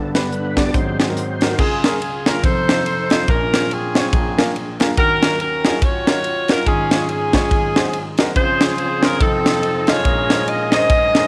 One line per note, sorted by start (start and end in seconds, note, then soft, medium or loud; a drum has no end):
0.00 0.71 G1 medium
0.00 0.71 G2 medium
0.00 0.71 D3 medium
0.00 0.71 B3 medium
0.00 0.11 A4 loud
0.15 0.25 B3 medium
0.15 0.25 D4 medium
0.15 0.25 G4 medium
0.15 0.25 B4 medium
0.15 snare loud
0.15 closed hi-hat medium
0.32 0.58 B4 medium
0.32 closed hi-hat medium
0.57 0.62 B3 medium
0.57 0.62 D4 medium
0.57 0.62 G4 medium
0.57 0.62 D5 medium
0.57 0.75 D5 loud
0.57 kick medium
0.57 snare loud
0.57 closed hi-hat medium
0.65 0.74 B3 medium
0.65 0.74 D4 medium
0.65 0.75 G4 medium
0.65 0.75 D5 medium
0.73 1.55 G#1 medium
0.73 1.55 G#2 medium
0.73 1.55 F#3 medium
0.73 1.55 C4 medium
0.73 0.98 C5 loud
0.73 kick loud
0.73 closed hi-hat medium
0.99 1.05 C4 medium
0.99 1.05 D#4 medium
0.99 1.05 F#4 medium
0.99 1.05 G#4 medium
0.99 1.08 G#4 medium
0.99 snare loud
0.99 closed hi-hat medium
1.08 1.19 C4 medium
1.08 1.19 D#4 medium
1.08 1.19 F#4 medium
1.08 1.19 A#4 medium
1.17 1.57 C5 medium
1.17 closed hi-hat medium
1.41 1.47 C4 medium
1.41 1.47 D#4 medium
1.41 1.47 F#4 medium
1.41 1.47 A#4 medium
1.41 snare loud
1.41 closed hi-hat medium
1.50 1.59 C4 medium
1.50 1.59 D#4 medium
1.50 1.59 F#4 medium
1.50 1.59 A#4 medium
1.59 2.40 C#2 medium
1.59 2.40 C#3 medium
1.59 2.40 F4 medium
1.59 1.99 G#4 medium
1.59 kick loud
1.59 crash medium
1.84 1.94 A#3 medium
1.84 1.94 C#4 medium
1.84 1.94 F4 medium
1.84 1.94 G#4 medium
1.84 1.94 A#4 medium
1.84 snare loud
1.84 ride medium
2.02 2.25 G#4 medium
2.02 ride medium
2.26 2.36 A#3 medium
2.26 2.36 C#4 medium
2.26 2.36 F4 medium
2.26 2.36 G#4 medium
2.26 2.36 A#4 medium
2.26 2.45 A#4 medium
2.26 snare loud
2.26 ride medium
2.44 3.24 F1 medium
2.44 3.24 F2 medium
2.44 3.24 D#4 medium
2.44 3.24 A4 medium
2.44 3.12 C5 medium
2.44 kick loud
2.44 ride medium
2.68 2.79 C4 medium
2.68 2.79 D#4 medium
2.68 2.79 F4 medium
2.68 2.79 A4 medium
2.68 2.79 C5 medium
2.68 snare loud
2.68 ride medium
2.86 ride medium
3.10 3.21 C4 medium
3.10 3.21 D#4 medium
3.10 3.21 F4 medium
3.10 3.21 A4 medium
3.10 3.28 C5 loud
3.10 3.21 D#5 medium
3.10 snare loud
3.10 ride medium
3.28 4.09 A#1 medium
3.28 4.09 A#2 medium
3.28 3.70 C#4 medium
3.28 4.09 F4 medium
3.28 3.71 A#4 loud
3.28 kick loud
3.28 ride medium
3.54 3.63 C4 medium
3.54 3.64 C#4 medium
3.54 3.64 F4 medium
3.54 3.64 G#4 medium
3.54 3.64 A#4 medium
3.54 snare loud
3.54 ride medium
3.71 4.77 C4 medium
3.71 4.77 C#4 medium
3.71 4.81 G#4 medium
3.71 ride medium
3.95 4.06 C4 medium
3.95 4.06 C#4 medium
3.95 4.06 F4 medium
3.95 4.06 G#4 medium
3.95 4.06 C#5 medium
3.95 snare loud
3.95 ride medium
4.13 4.93 A#1 medium
4.13 4.93 A#2 medium
4.13 kick loud
4.13 ride medium
4.38 4.48 A#3 loud
4.38 4.48 D4 medium
4.38 4.48 F4 medium
4.38 4.48 G#4 medium
4.38 4.48 A#4 loud
4.38 snare loud
4.38 ride medium
4.56 ride medium
4.80 4.90 A#3 loud
4.80 4.90 D4 medium
4.80 4.90 F4 medium
4.80 4.90 G#4 medium
4.80 4.90 A#4 loud
4.80 snare loud
4.80 ride medium
4.97 6.63 D#2 medium
4.97 6.62 D#3 medium
4.97 5.40 C#4 medium
4.97 5.40 F#4 medium
4.97 5.37 A#4 loud
4.97 kick loud
4.97 ride medium
5.22 5.32 C#4 medium
5.22 5.32 D#4 medium
5.22 5.32 F4 medium
5.22 5.32 F#4 medium
5.22 5.32 A#4 loud
5.22 snare loud
5.22 ride medium
5.40 6.21 C#4 medium
5.40 5.81 F#4 medium
5.40 5.80 A#4 medium
5.40 ride medium
5.65 5.75 C#4 medium
5.65 5.75 D#4 medium
5.65 5.75 F4 medium
5.65 5.75 F#4 medium
5.65 5.75 G#4 medium
5.65 snare loud
5.65 ride medium
5.82 6.63 F4 medium
5.82 6.63 F#4 medium
5.82 6.50 C#5 loud
5.82 kick loud
5.82 ride medium
6.07 6.17 C#4 medium
6.07 6.17 D#4 medium
6.07 6.17 F4 medium
6.07 6.17 F#4 medium
6.07 6.17 A#4 medium
6.07 snare loud
6.07 ride medium
6.24 ride medium
6.48 6.59 C#4 medium
6.48 6.59 D#4 medium
6.48 6.59 F4 medium
6.48 6.59 F#4 medium
6.48 6.59 A#4 medium
6.48 6.67 A#4 loud
6.48 snare loud
6.48 ride medium
6.66 7.47 G#1 medium
6.66 7.47 G#2 medium
6.66 7.08 C#4 medium
6.66 7.08 F4 medium
6.66 7.08 G#4 loud
6.66 kick loud
6.66 ride medium
6.91 7.01 G#3 medium
6.91 7.01 C#4 medium
6.91 7.02 F4 medium
6.91 7.02 G#4 medium
6.91 7.02 C#5 medium
6.91 snare loud
6.91 ride medium
7.09 8.15 C#4 medium
7.09 8.15 F4 medium
7.09 8.15 G#4 medium
7.09 ride medium
7.33 7.44 G#3 medium
7.33 7.44 C#4 medium
7.33 7.44 F4 medium
7.33 7.44 G#4 medium
7.33 7.44 C#5 medium
7.33 kick medium
7.33 snare loud
7.33 ride medium
7.51 8.32 G#1 medium
7.51 8.32 G#2 medium
7.51 kick loud
7.51 ride medium
7.76 7.86 C4 medium
7.76 7.86 D#4 medium
7.76 7.86 F#4 medium
7.76 7.86 G#4 medium
7.76 7.86 C5 loud
7.76 snare loud
7.76 ride medium
7.93 ride medium
8.18 8.29 C4 medium
8.18 8.29 D#4 medium
8.18 8.29 F#4 medium
8.18 8.29 G#4 medium
8.18 8.29 A#4 loud
8.18 snare loud
8.18 ride medium
8.36 9.17 C#2 medium
8.36 9.17 C#3 medium
8.36 9.20 F3 medium
8.36 10.04 C4 medium
8.36 9.20 C#4 medium
8.36 9.17 F4 medium
8.36 9.20 G#4 medium
8.36 9.17 G#4 medium
8.36 8.76 C5 loud
8.36 kick loud
8.36 ride medium
8.61 8.71 C4 medium
8.61 8.71 C#4 medium
8.61 8.71 F4 medium
8.61 8.71 G#4 medium
8.61 8.71 C5 medium
8.61 snare loud
8.61 ride medium
8.78 9.02 C5 loud
8.78 ride medium
9.03 9.13 C4 medium
9.03 9.13 C#4 medium
9.03 9.14 F4 medium
9.03 9.14 G#4 medium
9.03 9.21 A#4 loud
9.03 9.14 C5 medium
9.03 snare loud
9.03 ride medium
9.21 10.02 F1 medium
9.21 10.02 F2 medium
9.21 10.05 F3 medium
9.21 10.02 C4 medium
9.21 10.05 D#4 medium
9.21 10.02 D#4 medium
9.21 10.05 A4 medium
9.21 9.89 A4 loud
9.21 kick loud
9.21 ride medium
9.45 9.55 C4 medium
9.45 9.56 D#4 medium
9.45 9.56 F4 medium
9.45 9.56 A4 medium
9.45 9.56 C5 medium
9.45 snare loud
9.45 ride medium
9.63 ride medium
9.87 9.98 C4 medium
9.87 9.98 D#4 medium
9.87 9.98 F4 medium
9.87 10.69 F4 medium
9.87 10.69 G#4 medium
9.87 9.98 A4 medium
9.87 10.48 C#5 loud
9.87 9.98 D#5 medium
9.87 snare loud
9.87 ride medium
10.05 11.27 A#1 medium
10.05 11.27 A#2 medium
10.05 11.27 G#3 medium
10.05 11.27 C#4 medium
10.05 11.27 D#4 medium
10.05 11.27 A#4 medium
10.05 kick loud
10.05 ride medium
10.30 10.40 C#4 medium
10.30 10.41 D#4 medium
10.30 10.41 G#4 medium
10.30 10.41 A#4 medium
10.30 10.41 C5 medium
10.30 snare loud
10.30 ride medium
10.48 10.72 D#5 loud
10.48 ride medium
10.72 10.83 C#4 medium
10.72 10.83 D#4 medium
10.72 11.27 G#4 medium
10.72 10.83 G#4 medium
10.72 10.83 A#4 medium
10.72 11.27 C5 medium
10.72 10.83 C5 loud
10.72 11.27 D#5 loud
10.72 snare loud
10.72 ride medium
10.90 kick loud
10.90 ride medium
11.15 11.25 C#4 medium
11.15 11.26 D#4 medium
11.15 11.26 G#4 medium
11.15 11.26 A#4 medium
11.15 11.26 C5 medium
11.15 snare loud
11.15 ride medium